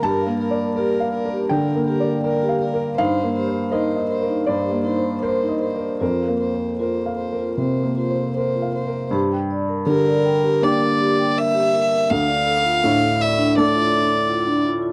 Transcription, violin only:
0, 0, Header, 1, 2, 480
1, 0, Start_track
1, 0, Tempo, 743494
1, 18, Time_signature, 4, 2, 24, 8
1, 3378, Tempo, 784314
1, 5298, Tempo, 758534
1, 6258, Tempo, 734394
1, 9550, End_track
2, 0, Start_track
2, 0, Title_t, "Violin"
2, 0, Program_c, 0, 40
2, 27, Note_on_c, 0, 70, 61
2, 255, Note_off_c, 0, 70, 0
2, 259, Note_on_c, 0, 70, 52
2, 485, Note_off_c, 0, 70, 0
2, 489, Note_on_c, 0, 70, 59
2, 725, Note_off_c, 0, 70, 0
2, 731, Note_on_c, 0, 70, 54
2, 965, Note_off_c, 0, 70, 0
2, 971, Note_on_c, 0, 70, 57
2, 1205, Note_off_c, 0, 70, 0
2, 1208, Note_on_c, 0, 70, 55
2, 1439, Note_off_c, 0, 70, 0
2, 1443, Note_on_c, 0, 70, 53
2, 1681, Note_off_c, 0, 70, 0
2, 1690, Note_on_c, 0, 70, 51
2, 1916, Note_off_c, 0, 70, 0
2, 1920, Note_on_c, 0, 72, 56
2, 2158, Note_off_c, 0, 72, 0
2, 2165, Note_on_c, 0, 72, 50
2, 2400, Note_off_c, 0, 72, 0
2, 2404, Note_on_c, 0, 72, 48
2, 2642, Note_off_c, 0, 72, 0
2, 2648, Note_on_c, 0, 72, 43
2, 2885, Note_off_c, 0, 72, 0
2, 2890, Note_on_c, 0, 72, 43
2, 3123, Note_off_c, 0, 72, 0
2, 3127, Note_on_c, 0, 72, 44
2, 3365, Note_off_c, 0, 72, 0
2, 3368, Note_on_c, 0, 72, 43
2, 3604, Note_off_c, 0, 72, 0
2, 3611, Note_on_c, 0, 72, 37
2, 3845, Note_off_c, 0, 72, 0
2, 3849, Note_on_c, 0, 72, 42
2, 4089, Note_off_c, 0, 72, 0
2, 4094, Note_on_c, 0, 72, 37
2, 4330, Note_off_c, 0, 72, 0
2, 4334, Note_on_c, 0, 72, 38
2, 4565, Note_off_c, 0, 72, 0
2, 4569, Note_on_c, 0, 72, 36
2, 4810, Note_off_c, 0, 72, 0
2, 4816, Note_on_c, 0, 72, 38
2, 5053, Note_off_c, 0, 72, 0
2, 5059, Note_on_c, 0, 72, 38
2, 5291, Note_off_c, 0, 72, 0
2, 5295, Note_on_c, 0, 72, 41
2, 5536, Note_off_c, 0, 72, 0
2, 5540, Note_on_c, 0, 72, 36
2, 5776, Note_off_c, 0, 72, 0
2, 6255, Note_on_c, 0, 70, 95
2, 6747, Note_on_c, 0, 74, 91
2, 6757, Note_off_c, 0, 70, 0
2, 7232, Note_on_c, 0, 76, 102
2, 7242, Note_off_c, 0, 74, 0
2, 7707, Note_on_c, 0, 77, 114
2, 7716, Note_off_c, 0, 76, 0
2, 8432, Note_on_c, 0, 76, 95
2, 8441, Note_off_c, 0, 77, 0
2, 8667, Note_off_c, 0, 76, 0
2, 8676, Note_on_c, 0, 74, 100
2, 9370, Note_off_c, 0, 74, 0
2, 9550, End_track
0, 0, End_of_file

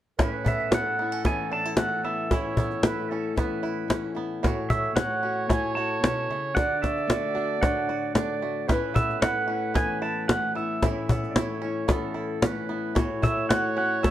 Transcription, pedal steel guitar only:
0, 0, Header, 1, 2, 480
1, 0, Start_track
1, 0, Key_signature, 3, "major"
1, 0, Tempo, 532387
1, 166, Time_signature, 4, 2, 24, 8
1, 12717, End_track
2, 0, Start_track
2, 0, Title_t, "Pedal steel guitar"
2, 0, Program_c, 0, 26
2, 433, Note_on_c, 0, 76, 75
2, 665, Note_off_c, 0, 76, 0
2, 671, Note_on_c, 0, 78, 88
2, 1104, Note_off_c, 0, 78, 0
2, 1140, Note_on_c, 0, 80, 100
2, 1373, Note_off_c, 0, 80, 0
2, 1376, Note_on_c, 0, 81, 101
2, 1606, Note_off_c, 0, 81, 0
2, 1610, Note_on_c, 0, 78, 98
2, 1845, Note_on_c, 0, 76, 73
2, 1852, Note_off_c, 0, 78, 0
2, 3244, Note_off_c, 0, 76, 0
2, 4239, Note_on_c, 0, 76, 78
2, 4470, Note_on_c, 0, 78, 95
2, 4484, Note_off_c, 0, 76, 0
2, 4950, Note_off_c, 0, 78, 0
2, 4954, Note_on_c, 0, 80, 103
2, 5182, Note_off_c, 0, 80, 0
2, 5186, Note_on_c, 0, 81, 110
2, 5900, Note_off_c, 0, 81, 0
2, 5903, Note_on_c, 0, 78, 99
2, 6149, Note_on_c, 0, 76, 83
2, 6157, Note_off_c, 0, 78, 0
2, 6862, Note_off_c, 0, 76, 0
2, 6865, Note_on_c, 0, 78, 71
2, 7555, Note_off_c, 0, 78, 0
2, 8073, Note_on_c, 0, 76, 78
2, 8298, Note_off_c, 0, 76, 0
2, 8312, Note_on_c, 0, 78, 87
2, 8799, Note_off_c, 0, 78, 0
2, 8802, Note_on_c, 0, 80, 102
2, 9033, Note_off_c, 0, 80, 0
2, 9036, Note_on_c, 0, 81, 99
2, 9266, Note_off_c, 0, 81, 0
2, 9269, Note_on_c, 0, 78, 97
2, 9497, Note_off_c, 0, 78, 0
2, 9524, Note_on_c, 0, 76, 77
2, 10929, Note_off_c, 0, 76, 0
2, 11933, Note_on_c, 0, 76, 75
2, 12161, Note_off_c, 0, 76, 0
2, 12165, Note_on_c, 0, 78, 90
2, 12412, Note_off_c, 0, 78, 0
2, 12422, Note_on_c, 0, 78, 95
2, 12640, Note_off_c, 0, 78, 0
2, 12652, Note_on_c, 0, 76, 80
2, 12717, Note_off_c, 0, 76, 0
2, 12717, End_track
0, 0, End_of_file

